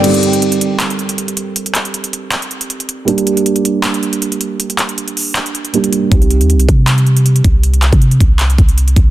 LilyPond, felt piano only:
\new Staff \with { instrumentName = "Felt piano" } { \time 4/4 \key c \dorian \tempo 4 = 158 <g c' ees' g'>1~ | <g c' ees' g'>1 | <g bes d' g'>1~ | <g bes d' g'>2. <g bes d' g'>4 |
<g c' ees' g'>1~ | <g c' ees' g'>1 | }